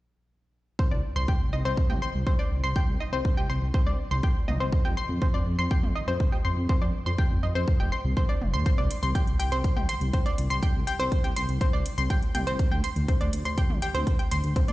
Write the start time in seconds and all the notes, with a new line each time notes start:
0.79 C5, kick
0.91 C2 D5
1.16 C2 C6
1.28 G5, kick
1.41 C2
1.53 C2 D#5
1.65 C2 C5
1.77 kick
1.90 C2 G5, mid tom
2.02 C6
2.14 C2
2.27 C5, kick
2.39 D5
2.51 C2
2.63 C2 C6
2.76 G5, kick
2.88 C2
3.00 D#5
3.13 C2 C5
3.25 kick
3.37 C2 G5
3.49 C2 C6
3.62 C2
3.74 C5, kick
3.86 C2 D5
4.11 C2 C6
4.23 G5, kick
4.48 C2 D#5, mid tom
4.60 C2 C5
4.72 kick
4.85 F2 G5
4.97 C6
5.09 F2
5.22 C5, kick
5.34 F2 D5
5.46 F2
5.59 F2 C6
5.71 G5, kick
5.83 F2, mid tom
5.96 D#5
6.08 F2 C5
6.20 kick
6.32 G5
6.45 F2 C6
6.57 F2
6.69 C5, kick
6.82 F2 D5
7.06 F2 C6
7.18 G5, kick
7.31 F2
7.43 F2 D#5
7.55 F2 C5
7.68 kick
7.80 F1 G5
7.92 C6
8.04 C2
8.17 C5, kick
8.29 D5
8.41 F1, mid tom
8.54 D#2 C6
8.66 C5, kick, closed hi-hat
8.78 C2 D5
8.91 closed hi-hat
9.03 C2 C6, closed hi-hat
9.15 G5, kick, closed hi-hat
9.27 C2, closed hi-hat
9.40 C2 G5, closed hi-hat
9.52 C2 C5, closed hi-hat
9.64 kick, closed hi-hat
9.76 C2 G5, mid tom
9.89 C6, closed hi-hat
10.01 C2, closed hi-hat
10.13 C5, kick, closed hi-hat
10.26 D5, closed hi-hat
10.38 C2, closed hi-hat
10.50 C2 C6, closed hi-hat
10.63 G5, kick, closed hi-hat
10.75 C2
10.87 G5, closed hi-hat
10.99 C2 C5, closed hi-hat
11.12 kick, closed hi-hat
11.24 C2 G5, closed hi-hat
11.36 C2 C6, closed hi-hat
11.49 C2, closed hi-hat
11.61 C5, kick, closed hi-hat
11.73 C2 D5
11.86 closed hi-hat
11.98 C2 C6, closed hi-hat
12.10 G5, kick, closed hi-hat
12.23 closed hi-hat
12.35 C2 G5, closed hi-hat, mid tom
12.47 C2 C5, closed hi-hat
12.59 kick, closed hi-hat
12.72 D2 G5
12.84 C6, closed hi-hat
12.96 D2, closed hi-hat
13.08 C5, kick, closed hi-hat
13.21 D2 D5, closed hi-hat
13.33 D2, closed hi-hat
13.45 D2 C6, closed hi-hat
13.58 G5, kick, closed hi-hat
13.70 D2, mid tom
13.82 G5, closed hi-hat
13.95 D2 C5, closed hi-hat
14.07 kick, closed hi-hat
14.19 G5, closed hi-hat
14.31 D2 C6, closed hi-hat
14.44 D2, closed hi-hat
14.56 C5, kick, closed hi-hat
14.68 D2 D5, closed hi-hat